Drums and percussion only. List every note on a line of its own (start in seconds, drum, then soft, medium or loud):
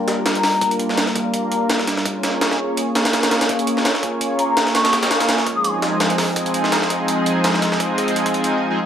0.08 snare medium
0.08 closed hi-hat medium
0.26 snare loud
0.26 closed hi-hat medium
0.35 closed hi-hat soft
0.43 snare medium
0.43 open hi-hat medium
0.61 kick loud
0.61 closed hi-hat medium
0.71 closed hi-hat soft
0.80 closed hi-hat medium
0.89 snare soft
0.98 snare loud
0.98 closed hi-hat medium
1.07 snare soft
1.15 kick loud
1.15 closed hi-hat medium
1.34 closed hi-hat medium
1.52 closed hi-hat medium
1.69 snare loud
1.69 closed hi-hat medium
1.79 snare soft
1.87 snare soft
1.87 closed hi-hat medium
1.97 snare soft
2.05 kick loud
2.05 closed hi-hat medium
2.23 snare medium
2.23 closed hi-hat medium
2.41 snare loud
2.41 closed hi-hat medium
2.51 snare soft
2.77 closed hi-hat medium
2.95 snare loud
2.95 closed hi-hat medium
3.05 snare loud
3.05 closed hi-hat medium
3.13 snare loud
3.13 closed hi-hat medium
3.23 snare loud
3.23 closed hi-hat medium
3.31 snare loud
3.31 closed hi-hat medium
3.41 snare loud
3.41 closed hi-hat medium
3.49 kick loud
3.49 closed hi-hat medium
3.59 closed hi-hat soft
3.67 closed hi-hat medium
3.77 snare soft
3.85 snare loud
3.85 closed hi-hat medium
3.95 snare soft
4.03 kick loud
4.03 closed hi-hat medium
4.21 closed hi-hat medium
4.39 closed hi-hat medium
4.57 snare loud
4.57 closed hi-hat medium
4.67 snare medium
4.75 snare loud
4.75 closed hi-hat medium
4.85 snare loud
4.85 closed hi-hat medium
4.93 snare loud
4.93 closed hi-hat medium
5.03 snare loud
5.03 closed hi-hat medium
5.11 snare loud
5.11 closed hi-hat medium
5.20 snare loud
5.20 closed hi-hat medium
5.29 snare loud
5.29 closed hi-hat medium
5.38 snare soft
5.47 kick medium
5.47 closed hi-hat medium
5.64 closed hi-hat medium
5.82 snare medium
5.82 closed hi-hat medium
6.00 snare loud
6.00 closed hi-hat medium
6.10 closed hi-hat soft
6.18 snare medium
6.18 open hi-hat medium
6.36 kick loud
6.36 closed hi-hat medium
6.46 closed hi-hat soft
6.54 closed hi-hat medium
6.64 snare soft
6.72 snare loud
6.72 closed hi-hat medium
6.82 snare soft
6.90 kick medium
6.90 closed hi-hat medium
7.08 closed hi-hat medium
7.26 closed hi-hat medium
7.44 snare loud
7.44 closed hi-hat medium
7.54 snare medium
7.62 snare soft
7.62 closed hi-hat medium
7.72 snare soft
7.80 kick loud
7.80 closed hi-hat medium
7.98 kick loud
7.98 closed hi-hat medium
8.08 closed hi-hat soft
8.16 closed hi-hat medium
8.26 kick loud
8.26 closed hi-hat medium
8.34 closed hi-hat soft
8.44 closed hi-hat medium